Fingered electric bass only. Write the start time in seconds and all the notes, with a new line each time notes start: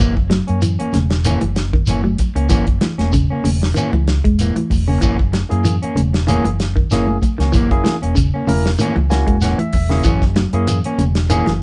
0.00 F#1
0.49 F#2
0.81 muted fingered electric bass stroke
0.94 E1
1.42 F#1
1.87 F#1
2.35 C#2
2.51 F#1
2.98 E1
3.44 E1
3.93 C#2
4.25 E1
4.56 muted fingered electric bass stroke
4.71 E1
5.02 F#1
5.51 F#2
5.83 muted fingered electric bass stroke
5.97 E1
6.44 F#1
6.91 F#1
7.39 C#2
7.55 F#1
8.03 E1
8.48 E1
8.96 C#2
9.28 E1
9.59 muted fingered electric bass stroke
9.74 E1
10.05 F#1
10.53 F#2
10.84 muted fingered electric bass stroke
10.98 E1
11.47 F#1